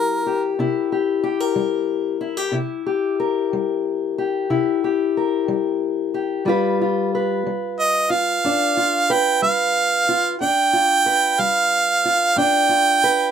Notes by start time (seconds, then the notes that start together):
Already playing: G3 E4 G4 A#4
0.27 G4
0.59 C3 E4
0.92 G4
1.24 G4
1.40 A#4
1.56 G3
2.21 E4
2.37 G4
2.52 C3 E4
2.86 G4
3.20 A#4
3.53 G3
4.18 G4
4.50 C3 E4
4.84 G4
5.17 A#4
5.48 G3
6.14 G4
6.45 G2 G3 F4
6.49 B4
6.81 F4
7.15 B4
7.46 G3
7.80 D#5
8.10 F4 F5
8.44 G2 D4
8.77 F4
9.10 B4 G5
9.42 G3 F5
10.09 F4
10.40 G2 D4 G5
10.73 F4
11.06 B4
11.39 G3 F5
12.05 F4
12.36 G2 D4 G5
12.69 F4
13.04 B4